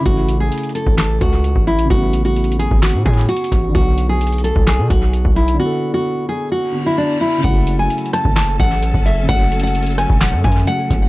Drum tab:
CC |------------------------------------------------------------------------------------------------|------------------------------------------------------------------------------------------------|------------------------------------------------------------------------------------------------|------------------------------------------------------------------------------------------------|
HH |x-----------x-----------x--x--x--x--x-----------x-----------x-----------x-----------x-----x-----|x-----------x-----x-----x---x---x---x-----------x-----------x---x---x---x---x---x---x-----------|x-----------x-----------x--x--x--x--x-----------x-----------x-----------x-----------x-----x-----|------------------------------------------------------------------------------------------------|
CP |------------------------------------------------x-----------------------------------------------|------------------------------------------------x-----------------------------------------------|------------------------------------------------x-----------------------------------------------|------------------------------------------------------------------------------------------------|
SD |------------------------------------------------o-----------------------------------------------|------------------------------------------------o-----------------------------------------------|------------------------------------------------o-----------------------------------------------|------------------------------------------------------------------------------------------------|
BD |o-----------------------------------------o-----------------o-----------------o-----------------|o-----------------------------------------o-----------------o-----------------------o-----------|o-----------------------------------------o-----------------o-----------------o-----------------|------------------------------------------------------------------------------------------------|

CC |x-----------------------------------------------------------------------------------------------|------------------------------------------------------------------------------------------------|
HH |x-----------x-----------x---x---x---x-----------x-----------x-----------x-----------x-----------|x-----------x---x---x---x---x-x-x---x-----------x-----------x---x---x---x-----------x-----------|
CP |------------------------------------------------x-----------------------------------------------|------------------------------------------------x-----------------------------------------------|
SD |------------------------------------r-----------o-----------------------------------------------|------------------------------------r-----------o-----------------------------------------------|
BD |o-----------------------------------------o-----------------o-----------------o-----------------|o-----------------------------------------o-----------------o-----------------------o-----------|